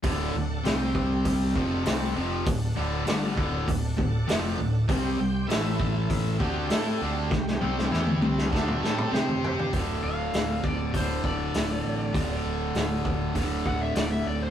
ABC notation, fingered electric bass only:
X:1
M:4/4
L:1/8
Q:1/4=99
K:Clyd
V:1 name="Fingered electric bass" clef=bass
D,,, D,,, C,,3 =F,,, C,, F,,, | D,,, D,,, G,,, D,,, D,,, D,,, =F,,, D,,, | C,, C,, A,,,3 D,, A,, D,, | C,, C,, E,, C,, D,, A,, C,2 |
D,,, D,,, D,,, D,,, D,,, D,,, D,,, A,,, | D,,, D,,, D,,, D,,, D,,, D,,, D,,, D,,, |]